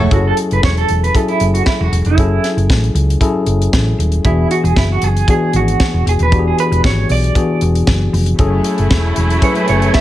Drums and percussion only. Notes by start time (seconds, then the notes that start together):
0.11 kick, closed hi-hat
0.37 closed hi-hat
0.51 closed hi-hat
0.63 kick, snare
0.77 closed hi-hat
0.89 closed hi-hat
1.04 closed hi-hat
1.15 kick, closed hi-hat
1.28 closed hi-hat
1.40 closed hi-hat
1.55 closed hi-hat
1.66 kick, snare
1.93 closed hi-hat
2.05 closed hi-hat
2.18 kick, closed hi-hat
2.44 snare, closed hi-hat
2.58 closed hi-hat
2.70 kick, snare
2.84 closed hi-hat
2.96 closed hi-hat
3.10 closed hi-hat
3.21 kick, closed hi-hat
3.46 closed hi-hat
3.62 closed hi-hat
3.73 kick, snare
4.00 closed hi-hat
4.12 closed hi-hat
4.25 kick, closed hi-hat
4.51 closed hi-hat
4.65 closed hi-hat
4.76 kick, snare
5.02 closed hi-hat
5.17 closed hi-hat
5.28 kick, closed hi-hat
5.53 closed hi-hat
5.68 closed hi-hat
5.80 kick, snare
6.07 closed hi-hat
6.19 closed hi-hat
6.32 kick, closed hi-hat
6.58 closed hi-hat
6.72 closed hi-hat
6.84 kick, snare
7.09 open hi-hat
7.24 closed hi-hat
7.35 kick, closed hi-hat
7.61 closed hi-hat
7.75 closed hi-hat
7.87 kick, snare
8.14 open hi-hat
8.26 closed hi-hat
8.39 kick, closed hi-hat
8.64 closed hi-hat
8.78 closed hi-hat
8.91 kick, snare
9.16 closed hi-hat
9.30 closed hi-hat
9.42 kick, closed hi-hat
9.55 closed hi-hat
9.68 closed hi-hat
9.82 closed hi-hat
9.94 kick, snare